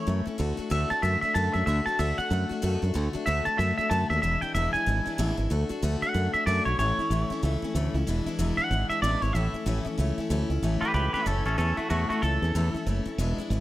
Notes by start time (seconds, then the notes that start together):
Already playing: C#5
0.07 F#2 E3 A3 C#4 E4
0.25 A3 C#4 E4, muted fingered electric bass stroke
0.38 D2 D3 A3 D4 F#4
0.57 A3 D4 F#4, muted fingered electric bass stroke
0.70 D2 D3 A3 D4 F#4 E5
0.90 A3 D4 F#4 A5, muted fingered electric bass stroke
1.02 F#2 D3 A3 D4 F#4 E5
1.21 A3 D4 F#4 E5, muted fingered electric bass stroke
1.34 F#2 D3 A3 D4 F#4 A5
1.53 F#2 A3 D4 F#4 E5
1.66 D2 D3 A3 D4 F#4 E5
1.86 A3 D4 F#4 A5, muted fingered electric bass stroke
1.99 D2 D3 A3 D4 F#4 E5
2.18 A3 D4 F#4 F#5, muted fingered electric bass stroke
2.30 F#2 D3 A3 D4 F#4
2.49 A3 D4 F#4, muted fingered electric bass stroke
2.62 F#2 D3 A3 D4 F#4
2.82 F#2 A3 D4 F#4
2.94 D2 D3 A3 D4 F#4
3.13 A3 D4 F#4, muted fingered electric bass stroke
3.26 D2 D3 A3 D4 F#4 E5
3.45 A3 D4 F#4 A5, muted fingered electric bass stroke
3.58 F#2 D3 A3 D4 F#4 E5
3.78 A3 D4 F#4 E5, muted fingered electric bass stroke
3.90 F#2 D3 A3 D4 F#4 A5
4.10 D#2 A3 D4 F#4 E5
4.22 E1 E2 B2 E3 G#3 D4 E4 E5
4.41 E3 G#3 D4 E4 G5, muted fingered electric bass stroke
4.54 E1 E2 B2 E3 G#3 D4 E4 E5
4.73 E3 G#3 D4 E4 G#5, muted fingered electric bass stroke
4.86 G#1 E3 G#3 D4 E4
5.06 E3 G#3 D4 E4, muted fingered electric bass stroke
5.18 A1 E2 B2 E3 G#3 D4 E4
5.37 G#1 E3 G#3 D4 E4
5.50 D2 D3 A3 D4 F#4
5.69 A3 D4 F#4, muted fingered electric bass stroke
5.82 D2 D3 A3 D4 F#4
6.02 A3 D4 F#4 F#5, muted fingered electric bass stroke
6.14 F#2 D3 A3 D4 F#4
6.34 A3 D4 F#4 E5, muted fingered electric bass stroke
6.46 F#2 D3 A3 D4 F#4 D5
6.65 B1 A3 D4 F#4 C#5
6.79 A1 A2 E3 A3 C#4 E4 C#5
6.98 A3 C#4 E4, muted fingered electric bass stroke
7.10 A1 A2 E3 A3 C#4 E4
7.30 A3 C#4 E4, muted fingered electric bass stroke
7.43 C#2 E3 A3 C#4 E4
7.62 A3 C#4 E4, muted fingered electric bass stroke
7.75 D2 A2 E3 A3 C#4 E4
7.94 C#2 A3 C#4 E4
8.07 E1 E2 B2 E3 G#3 D4 E4
8.26 E3 G#3 D4 E4, muted fingered electric bass stroke
8.39 E1 E2 B2 E3 G#3 D4 E4
8.57 E3 G#3 D4 E4 F#5, muted fingered electric bass stroke
8.71 G#1 E3 G#3 D4 E4
8.89 E3 G#3 D4 E4 E5, muted fingered electric bass stroke
9.02 A1 E2 B2 E3 G#3 D4 E4 D5
9.22 G#1 E3 G#3 D4 E4 C#5
9.33 A1 A2 E3 A3 C#4 E4 E5
9.54 A3 C#4 E4, muted fingered electric bass stroke
9.66 A1 A2 E3 A3 C#4 E4
9.85 A3 C#4 E4, muted fingered electric bass stroke
9.98 C#2 E3 A3 C#4 E4
10.18 A3 C#4 E4, muted fingered electric bass stroke
10.30 D2 A2 E3 A3 C#4 E4
10.50 C#2 A3 C#4 E4
10.62 A1 A2 E3 A3 C#4 E4
10.81 C#4 E4 G4 B4, muted fingered electric bass stroke
10.85 A3
10.94 C#2 E3 A3 C#4 E4 G4 B4
11.13 A3 C#4 E4 G4 B4, muted fingered electric bass stroke
11.26 F#1 A2 E3 A3 C#4 E4 A4
11.45 A1 A3 C#4 E4 A4
11.58 E2 E3 A3 C#4 E4 A4
11.77 A3 C#4 E4 F#4, muted fingered electric bass stroke
11.90 E2 A2 E3 A3 C#4 E4 F#4
12.09 A3 C#4 E4 F#4, muted fingered electric bass stroke
12.22 C#2 E3 A3 C#4 E4 A4
12.42 E2 A3 C#4 E4
12.55 E2 A2 E3 A3 C#4 E4
12.74 A3 C#4 E4, muted fingered electric bass stroke
12.86 F#1 E3 A3 C#4 E4
13.05 A3 C#4 E4, muted fingered electric bass stroke
13.18 E1 E2 B2 E3 G#3 D4 E4
13.38 E3 G#3 D4 E4, muted fingered electric bass stroke
13.50 G#1 E3 G#3 D4 E4